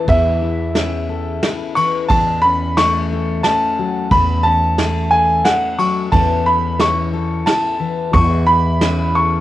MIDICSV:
0, 0, Header, 1, 5, 480
1, 0, Start_track
1, 0, Tempo, 671141
1, 56, Time_signature, 3, 2, 24, 8
1, 6726, End_track
2, 0, Start_track
2, 0, Title_t, "Upright piano"
2, 0, Program_c, 0, 0
2, 64, Note_on_c, 0, 76, 86
2, 993, Note_off_c, 0, 76, 0
2, 1254, Note_on_c, 0, 85, 99
2, 1491, Note_on_c, 0, 81, 103
2, 1503, Note_off_c, 0, 85, 0
2, 1728, Note_on_c, 0, 83, 105
2, 1742, Note_off_c, 0, 81, 0
2, 1981, Note_off_c, 0, 83, 0
2, 1981, Note_on_c, 0, 85, 105
2, 2455, Note_on_c, 0, 81, 99
2, 2475, Note_off_c, 0, 85, 0
2, 2909, Note_off_c, 0, 81, 0
2, 2942, Note_on_c, 0, 83, 106
2, 3170, Note_on_c, 0, 81, 104
2, 3188, Note_off_c, 0, 83, 0
2, 3626, Note_off_c, 0, 81, 0
2, 3652, Note_on_c, 0, 80, 92
2, 3895, Note_on_c, 0, 78, 83
2, 3903, Note_off_c, 0, 80, 0
2, 4137, Note_on_c, 0, 85, 92
2, 4144, Note_off_c, 0, 78, 0
2, 4375, Note_on_c, 0, 81, 97
2, 4385, Note_off_c, 0, 85, 0
2, 4622, Note_on_c, 0, 83, 92
2, 4624, Note_off_c, 0, 81, 0
2, 4843, Note_off_c, 0, 83, 0
2, 4868, Note_on_c, 0, 85, 100
2, 5335, Note_on_c, 0, 81, 88
2, 5357, Note_off_c, 0, 85, 0
2, 5817, Note_on_c, 0, 85, 102
2, 5830, Note_off_c, 0, 81, 0
2, 6055, Note_on_c, 0, 83, 105
2, 6064, Note_off_c, 0, 85, 0
2, 6547, Note_on_c, 0, 85, 96
2, 6549, Note_off_c, 0, 83, 0
2, 6726, Note_off_c, 0, 85, 0
2, 6726, End_track
3, 0, Start_track
3, 0, Title_t, "Steel-string acoustic guitar"
3, 0, Program_c, 1, 25
3, 0, Note_on_c, 1, 52, 62
3, 0, Note_on_c, 1, 61, 57
3, 0, Note_on_c, 1, 69, 67
3, 57, Note_on_c, 1, 40, 67
3, 302, Note_on_c, 1, 64, 60
3, 541, Note_off_c, 1, 61, 0
3, 544, Note_on_c, 1, 61, 57
3, 777, Note_off_c, 1, 69, 0
3, 780, Note_on_c, 1, 69, 70
3, 1020, Note_off_c, 1, 64, 0
3, 1028, Note_on_c, 1, 64, 58
3, 1254, Note_off_c, 1, 52, 0
3, 1263, Note_on_c, 1, 52, 59
3, 1474, Note_off_c, 1, 64, 0
3, 1499, Note_off_c, 1, 40, 0
3, 1501, Note_off_c, 1, 52, 0
3, 1509, Note_on_c, 1, 40, 69
3, 1755, Note_off_c, 1, 61, 0
3, 1755, Note_on_c, 1, 61, 61
3, 1994, Note_on_c, 1, 57, 62
3, 2231, Note_off_c, 1, 69, 0
3, 2234, Note_on_c, 1, 69, 74
3, 2470, Note_off_c, 1, 61, 0
3, 2473, Note_on_c, 1, 61, 62
3, 2707, Note_on_c, 1, 54, 61
3, 2914, Note_off_c, 1, 54, 0
3, 2941, Note_off_c, 1, 40, 0
3, 2949, Note_on_c, 1, 40, 71
3, 3183, Note_off_c, 1, 61, 0
3, 3186, Note_on_c, 1, 61, 60
3, 3426, Note_off_c, 1, 57, 0
3, 3429, Note_on_c, 1, 57, 56
3, 3661, Note_off_c, 1, 69, 0
3, 3664, Note_on_c, 1, 69, 69
3, 3904, Note_off_c, 1, 61, 0
3, 3907, Note_on_c, 1, 61, 58
3, 4135, Note_on_c, 1, 54, 56
3, 4348, Note_off_c, 1, 54, 0
3, 4368, Note_off_c, 1, 40, 0
3, 4376, Note_on_c, 1, 40, 70
3, 4384, Note_on_c, 1, 52, 55
3, 4385, Note_off_c, 1, 57, 0
3, 4387, Note_off_c, 1, 61, 0
3, 4387, Note_on_c, 1, 61, 61
3, 4393, Note_off_c, 1, 69, 0
3, 4393, Note_on_c, 1, 64, 61
3, 4396, Note_on_c, 1, 69, 64
3, 4621, Note_off_c, 1, 64, 0
3, 4624, Note_on_c, 1, 64, 60
3, 4863, Note_off_c, 1, 61, 0
3, 4866, Note_on_c, 1, 61, 58
3, 5099, Note_off_c, 1, 69, 0
3, 5102, Note_on_c, 1, 69, 65
3, 5343, Note_off_c, 1, 64, 0
3, 5345, Note_on_c, 1, 64, 63
3, 5573, Note_off_c, 1, 52, 0
3, 5576, Note_on_c, 1, 52, 59
3, 5790, Note_off_c, 1, 69, 0
3, 5792, Note_off_c, 1, 61, 0
3, 5818, Note_off_c, 1, 40, 0
3, 5821, Note_on_c, 1, 40, 74
3, 6059, Note_off_c, 1, 64, 0
3, 6062, Note_on_c, 1, 64, 63
3, 6306, Note_on_c, 1, 61, 60
3, 6548, Note_on_c, 1, 69, 67
3, 6726, Note_off_c, 1, 40, 0
3, 6726, Note_off_c, 1, 52, 0
3, 6726, Note_off_c, 1, 61, 0
3, 6726, Note_off_c, 1, 64, 0
3, 6726, Note_off_c, 1, 69, 0
3, 6726, End_track
4, 0, Start_track
4, 0, Title_t, "Upright bass"
4, 0, Program_c, 2, 32
4, 58, Note_on_c, 2, 40, 106
4, 990, Note_off_c, 2, 40, 0
4, 1503, Note_on_c, 2, 40, 109
4, 2433, Note_off_c, 2, 40, 0
4, 2941, Note_on_c, 2, 40, 103
4, 3872, Note_off_c, 2, 40, 0
4, 4380, Note_on_c, 2, 40, 98
4, 5310, Note_off_c, 2, 40, 0
4, 5820, Note_on_c, 2, 40, 113
4, 6726, Note_off_c, 2, 40, 0
4, 6726, End_track
5, 0, Start_track
5, 0, Title_t, "Drums"
5, 55, Note_on_c, 9, 51, 51
5, 57, Note_on_c, 9, 36, 91
5, 127, Note_off_c, 9, 51, 0
5, 129, Note_off_c, 9, 36, 0
5, 537, Note_on_c, 9, 38, 65
5, 537, Note_on_c, 9, 51, 52
5, 609, Note_off_c, 9, 38, 0
5, 609, Note_off_c, 9, 51, 0
5, 1021, Note_on_c, 9, 38, 75
5, 1021, Note_on_c, 9, 51, 52
5, 1092, Note_off_c, 9, 38, 0
5, 1092, Note_off_c, 9, 51, 0
5, 1260, Note_on_c, 9, 51, 54
5, 1331, Note_off_c, 9, 51, 0
5, 1499, Note_on_c, 9, 51, 54
5, 1501, Note_on_c, 9, 36, 98
5, 1570, Note_off_c, 9, 51, 0
5, 1573, Note_off_c, 9, 36, 0
5, 1983, Note_on_c, 9, 38, 73
5, 1983, Note_on_c, 9, 51, 54
5, 2055, Note_off_c, 9, 38, 0
5, 2055, Note_off_c, 9, 51, 0
5, 2460, Note_on_c, 9, 38, 72
5, 2460, Note_on_c, 9, 51, 56
5, 2532, Note_off_c, 9, 38, 0
5, 2532, Note_off_c, 9, 51, 0
5, 2941, Note_on_c, 9, 36, 96
5, 2942, Note_on_c, 9, 51, 51
5, 3012, Note_off_c, 9, 36, 0
5, 3014, Note_off_c, 9, 51, 0
5, 3421, Note_on_c, 9, 38, 73
5, 3421, Note_on_c, 9, 51, 51
5, 3492, Note_off_c, 9, 38, 0
5, 3492, Note_off_c, 9, 51, 0
5, 3898, Note_on_c, 9, 38, 70
5, 3898, Note_on_c, 9, 51, 50
5, 3970, Note_off_c, 9, 38, 0
5, 3970, Note_off_c, 9, 51, 0
5, 4139, Note_on_c, 9, 51, 49
5, 4211, Note_off_c, 9, 51, 0
5, 4379, Note_on_c, 9, 36, 89
5, 4379, Note_on_c, 9, 51, 54
5, 4450, Note_off_c, 9, 51, 0
5, 4451, Note_off_c, 9, 36, 0
5, 4859, Note_on_c, 9, 38, 72
5, 4859, Note_on_c, 9, 51, 52
5, 4931, Note_off_c, 9, 38, 0
5, 4931, Note_off_c, 9, 51, 0
5, 5342, Note_on_c, 9, 38, 71
5, 5342, Note_on_c, 9, 51, 59
5, 5413, Note_off_c, 9, 38, 0
5, 5413, Note_off_c, 9, 51, 0
5, 5819, Note_on_c, 9, 51, 58
5, 5820, Note_on_c, 9, 36, 93
5, 5890, Note_off_c, 9, 51, 0
5, 5891, Note_off_c, 9, 36, 0
5, 6301, Note_on_c, 9, 38, 70
5, 6301, Note_on_c, 9, 51, 55
5, 6373, Note_off_c, 9, 38, 0
5, 6373, Note_off_c, 9, 51, 0
5, 6726, End_track
0, 0, End_of_file